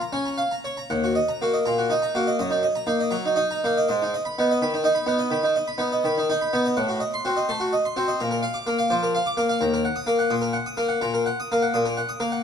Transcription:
harpsichord
0.01 A#5
0.13 C#4 G#5
0.26 A#5
0.38 F5
0.51 A#5
0.64 C#5
0.77 A#5
0.90 D#2 F#5
1.04 F#4
1.15 D#5
1.28 A#5
1.42 A#3 F#4
1.54 D#5
1.65 A#2 A#5
1.78 F#4
1.90 D#4 D#5
2.02 A#5
2.15 A#3 F#4
2.27 D#5
2.39 F#2 D#5
2.51 D#4
2.63 D#5
2.75 A#5
2.87 A#3 D#4
3.00 D#5
3.11 F#3 A#5
3.26 D#4
3.36 D#4 D#5
3.51 A#5
3.64 A#3 D#4
3.77 D#5
3.89 G#2 D#5
4.02 D#4
4.14 D#5
4.25 B5
4.38 B3 D#4
4.51 D#5
4.62 D#3 B5
4.74 D#4
4.84 D#4 D#5
4.95 B5
5.06 B3 D#4
5.19 D#5
5.31 D#3 B5
5.43 D#4
5.56 D#5
5.68 B5
5.78 B3 D#4
5.92 D#5
6.04 D#3 B5
6.18 D#4
6.30 D#4 D#5
6.42 B5
6.53 B3 D#4
6.66 D#5
6.77 A2 F#5
6.89 F#4
7.00 D#5
7.14 C6
7.25 C4 F#4
7.37 D#5
7.49 A3 C6
7.60 F#4
7.73 D#5
7.85 C6
7.96 C4 F#4
8.08 D#5
8.20 A#2 A#5
8.31 A#4
8.43 F5
8.54 D6
8.67 A#3 A#4
8.79 F5
8.90 F3 D6
9.03 A#4
9.15 F5
9.26 D6
9.37 A#3 A#4
9.49 F5
9.61 D#2 A#5
9.74 A#4
9.85 F#5
9.96 D#6
10.07 A#3 A#4
10.19 F#5
10.30 A#2 D#6
10.42 A#4
10.53 F#5
10.66 D#6
10.77 A#3 A#4
10.89 F#5
11.01 A#2 A#5
11.14 A#4
11.26 F#5
11.40 D#6
11.52 A#3 A#4
11.62 F#5
11.74 A#2 D#6
11.86 A#4
11.97 F#5
12.09 D#6
12.20 A#3 A#4
12.32 F#5

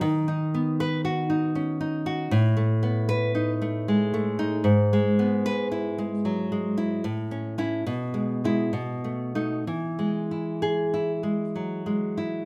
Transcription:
nylon-string guitar
0.01 D#3
0.28 D#4
0.54 B3
0.80 B4
1.05 F#4
1.30 D#4
1.55 C#4
1.81 D#4
2.06 F#4
2.31 A2
2.57 A3
2.83 B3
3.09 B4
3.35 D#4
3.62 A3
3.88 G#3
4.14 A3
4.39 D#4
4.64 G#2
4.93 G#3
5.19 B3
5.46 B4
5.72 E4
5.98 G#3
6.25 F#3
6.52 G#3
6.77 E4
7.04 A2
7.31 C#4
7.58 C#4 E4
7.87 B2
8.14 G#3
8.44 G#3 E4
8.73 B2
9.04 A3
9.35 A3 D#4
9.67 E3
9.99 G#3
10.31 E4
10.62 G#4
10.94 E4
11.23 G#3
11.55 F#3
11.86 G#3
12.17 E4

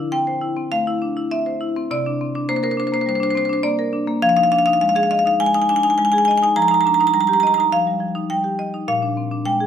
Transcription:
marimba
Already playing: D3 E4
0.12 C4 G5
0.27 C5
0.41 E4
0.56 C4
0.72 A3 F5
0.87 E4
1.02 D4
1.17 E4
1.31 C4 E5
1.46 C5
1.61 E4
1.76 C4
1.91 C3 D5
2.06 D4
2.21 C4
2.35 D4
2.49 A#3 C5
2.56 C5
2.63 A#4 C5
2.71 C5
2.77 D4 C5
2.87 C5
2.92 A#3 C5
3.01 C5
3.06 G3 C5
3.15 C5
3.20 D4 C5
3.31 C5
3.35 C4 C5
3.45 C5
3.49 D4 C5
3.63 A#3 D5
3.79 A#4
3.93 D4
4.07 A#3
4.22 F3 F5
4.29 F5
4.37 D#4 F5
4.44 F5
4.52 D4 F5
4.59 F5
4.66 D#4 F5
4.73 F5
4.81 G#3 F5
4.89 F5
4.96 G#4 F5
5.03 F5
5.11 D#5 F5
5.19 F5
5.26 D#4 F5
5.40 G#3 G#5
5.46 G#5
5.54 D#4 G#5
5.62 G#5
5.69 D4 G#5
5.76 G#5
5.83 D#4 G#5
5.90 G#5
5.98 G#3 G#5
6.05 G#5
6.12 G#4 G#5
6.18 G#5
6.25 D#5 G#5
6.31 G#5
6.38 G#5
6.43 D#4 G#5
6.56 F3 A#5
6.62 A#5
6.68 D#4 A#5
6.74 A#5
6.81 A#5
6.86 D4 A#5
6.94 A#5
7.00 D#4 A#5
7.07 A#5
7.14 G3 A#5
7.21 A#5
7.27 G4 A#5
7.33 A#5
7.40 D#5 A#5
7.47 A#5
7.54 D#4 A#5
7.60 A#5
7.72 F3 F5
7.87 G3
8.00 F3
8.15 D#4
8.30 G3 G5
8.44 G4
8.59 D#5
8.74 D#4
8.88 A#2 F5
9.02 D4
9.17 C4
9.31 D4
9.45 G#3 G5
9.60 G#4

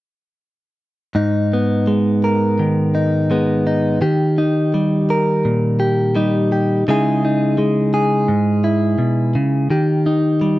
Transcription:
clean electric guitar
1.15 G#2 D#4
1.53 B3
1.87 G#3
2.24 A#4
2.59 D#3
2.95 D#4
3.31 G#3 B3
3.67 D#4
4.01 D#3 G4
4.38 D#4
4.74 G3
5.10 A#4
5.45 A#2
5.80 G4
6.15 G3 D#4
6.52 G4
6.88 C#3 G#3 D#4 E4 G#4
7.25 D#4
7.58 G#3
7.94 G#4
8.28 G#2
8.64 E4
8.98 B2
9.35 C#3
9.70 D#3 G4
10.06 D#4
10.41 G3

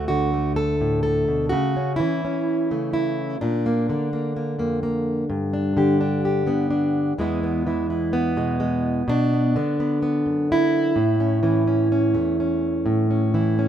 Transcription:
steel-string acoustic guitar
Already playing: D2 A3
0.08 D3 F#4
0.34 A3
0.56 A4
0.81 A2
1.03 A2 A4
1.28 B2
1.49 C#3 F#4
1.76 C#4
1.96 E3 E4
2.25 C#4
2.71 C#3 A3
2.93 E4
3.41 A#2 D4
3.66 A#3
3.89 D3 A#3
4.13 A#3
4.37 A#3
4.59 F2 A#3
4.83 A#3
5.30 G2
5.53 D4
5.77 D3 G4
6.01 D4
6.25 G4
6.46 D3 B3
6.70 D4
7.18 E2 E3 G#3 B3 E4
7.43 B3
7.67 E3 E4
7.90 E4
8.13 B3
8.37 B2 G#3
8.60 G#3
9.08 B2 D4
9.33 B3
9.56 D3 B3
9.80 B3
10.03 B3
10.26 F#2
10.52 E4
10.96 A2
11.20 C#4
11.43 E3 C#4
11.67 C#4
11.92 C#4
12.14 E2 A3
12.40 C#4
12.86 A2
13.11 C#4
13.34 E3 E4
13.59 C#4

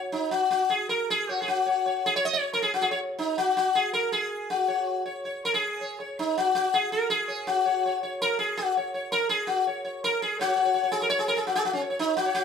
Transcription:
sitar
Already playing: C#5
0.12 D#4
0.31 F#4
0.50 F#4
0.70 G#4
0.89 A#4
1.10 G#4
1.29 C#5
1.42 G#4
1.48 F#4
1.66 C#5
1.86 C#5
2.06 G#4
2.16 C#5
2.25 D#5
2.33 C#5
2.53 A#4
2.62 G#4
2.74 F#4
2.82 G#4
2.91 C#5
3.19 D#4
3.38 F#4
3.57 F#4
3.75 G#4
3.93 A#4
4.12 G#4
4.50 F#4
4.68 C#5
5.06 C#5
5.25 C#5
5.45 A#4
5.54 G#4
5.81 C#5
6.00 C#5
6.19 D#4
6.38 F#4
6.55 F#4
6.74 G#4
6.92 A#4
7.10 G#4
7.28 C#5
7.47 F#4
7.66 C#5
7.86 C#5
8.03 C#5
8.22 A#4
8.39 G#4
8.57 F#4
8.77 C#5
8.94 C#5
9.12 A#4
9.29 G#4
9.47 F#4
9.67 C#5
9.85 C#5
10.04 A#4
10.22 G#4
10.39 F#4 C#5
10.48 C#5
10.56 C#5
10.65 C#5
10.74 C#5
10.83 C#5
10.92 G#4
11.02 A#4
11.10 C#5
11.19 G#4
11.28 A#4
11.37 G#4
11.47 F#4
11.55 G#4
11.65 F#4
11.73 C#4
11.81 C#5
11.90 C#5
11.99 D#4
12.17 F#4
12.26 C#5
12.35 F#4

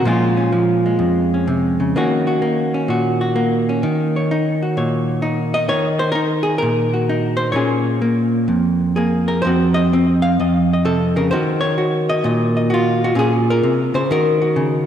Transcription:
hollow-body jazz guitar
0.05 A#2 F3 G#3 C#4 F4
0.37 C#4
0.52 F3
0.86 G#3
0.99 F2
1.34 C#4
1.48 C3
1.80 C#3
1.96 D#3 A#3 C#4 F#4
2.27 F#4
2.42 A#3
2.74 C#4
2.88 A#2 F#4
3.21 F#4
3.36 A#3
3.69 C#4
3.83 D#3
4.16 C#5
4.31 D#4
4.63 F#4
4.77 A#2 C#5
5.22 D#4
5.54 D#5
5.69 D#3 C#5
5.99 C5
6.12 D#4 A#4
6.43 G#4
6.58 A#4
6.62 A#2
6.93 F#4
7.09 D#4
7.37 C5
7.52 A#2 A#3 C#4 C#5
7.56 G#4
8.02 A#3
8.48 F2
8.96 A#3 G#4
9.28 A#4
9.42 F2 C5
9.46 C4 F#4
9.74 D#5
9.93 C4
10.22 F5
10.40 F2 D#5
10.73 D#5
10.85 C3 A4
11.16 C#3 A#4
11.31 D#3 F#4 C5
11.61 C#5
11.78 F#4
12.09 D#5
12.24 A#2 D#5
12.57 D#5
12.70 F4 F#4
13.04 F#4
13.15 A#2 C#4 F4 G#4
13.50 A#4
13.63 C3
13.94 C#3 C5
14.11 D#3 F#4 A#4
14.42 F#4
14.56 C#3

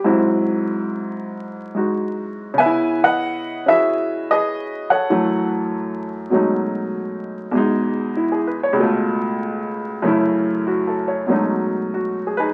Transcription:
grand piano
Already playing: G4
0.04 G#2 F#3 C4 E4
1.75 G#3 D#4 F#4
2.54 C#3
2.58 B3 B4 E5 G#5
2.66 E4
3.04 B4 D#5 F#5
3.66 C#4 E4 F#4 G#4 B4 E5
4.31 G#4 B4 D#5
4.90 A4 C#5 F#5
5.10 F#2 E3 F#3 A3
6.30 B2 F#3 G#3 A3 C#4
6.35 D#4
7.51 E2 B2 G#3
7.57 D#4
8.17 E4
8.32 G#4
8.47 B4
8.63 C#5
8.73 C#2 B2
8.80 A3 F4
10.02 F#2 C#3 A3
10.07 E4
10.67 F#4
10.87 A4
11.08 C#5
11.27 B2 F#3 G#3 A3
11.31 C#4 D#4
11.94 F#4
12.27 G#4
12.37 D#4 G#4 B4

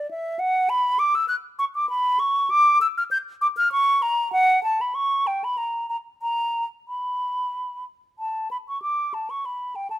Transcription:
flute
Already playing: D5
0.11 E5
0.39 F#5
0.70 B5
0.99 D6
1.15 E6
1.28 F#6
1.59 C#6
1.75 D6
1.89 B5
2.19 C#6
2.50 D6
2.81 E6
2.97 F6
3.11 G6
3.41 D6
3.57 F6
3.72 C#6
4.02 A#5
4.33 F#5
4.63 A5
4.81 B5
4.95 C#6
5.27 G5
5.44 B5
5.58 A#5
5.89 A#5
6.22 A#5
6.88 B5
8.19 A5
8.51 B5
8.68 C#6
8.82 D6
9.14 A5
9.30 C#6
9.45 B5
9.76 G5
9.90 A5

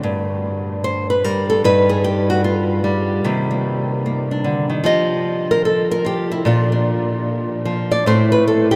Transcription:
nylon-string guitar
0.03 G2
0.84 C5
1.10 B4
1.24 G3 A#4
1.50 A4
1.64 G2 G3 D#4 B4
1.89 G#4
2.04 G4
2.30 F#4
2.44 F4
2.84 G3
3.24 C3 D#3 A#3
3.51 A#3
4.06 A#3
4.31 D4
4.44 D3
4.70 D#3
4.84 F3 F4 G4 D#5
5.51 A#4
5.65 A4
5.91 A#4
6.05 F4 G4
6.32 E4
6.45 A#2 F3 D4 F4
6.72 D4
7.65 F3
7.92 D5
8.06 A2 A3 C4 E4 C5
8.32 B4
8.48 A4
8.71 G4

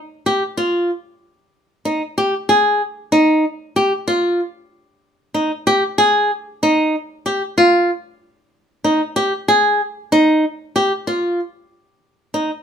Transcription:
nylon-string guitar
0.26 G4
0.57 F4
1.85 D#4
2.18 G4
2.49 G#4
3.12 D#4
3.76 G4
4.08 F4
5.34 D#4
5.67 G4
5.98 G#4
6.63 D#4
7.26 G4
7.58 F4
8.84 D#4
9.16 G4
9.48 G#4
10.12 D#4
10.76 G4
11.07 F4
12.34 D#4

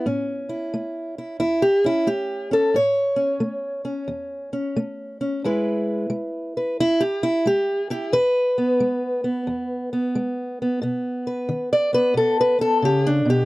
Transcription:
steel-string acoustic guitar
0.06 A2 C#4
0.49 E4
0.74 A3
1.18 E4
1.40 E2 E4
1.62 G4
1.84 C#4 E4
2.07 A3 G4
2.51 C#4 A4
2.74 A2 C#5
3.16 C#4
3.40 A3
3.85 C#4
4.08 E2
4.53 C#4
4.76 A3
5.21 C#4
5.44 E2 G#3 E4 B4
6.10 G#3
6.57 B4
6.80 E2 E4
7.00 G4
7.23 E4
7.46 G#3 G4
7.90 E4 G4
8.13 E2 B4
8.58 B3
8.80 G#3
9.24 B3
9.47 E2
9.93 B3
10.15 G#3
10.62 B3
10.82 B2 B3
11.27 B4
11.49 D#3
11.73 D5
11.93 B3 B4
12.14 B2 A4
12.41 B4
12.59 B3 A4
12.82 C#3 G4
13.07 D4
13.25 B2
13.30 G4

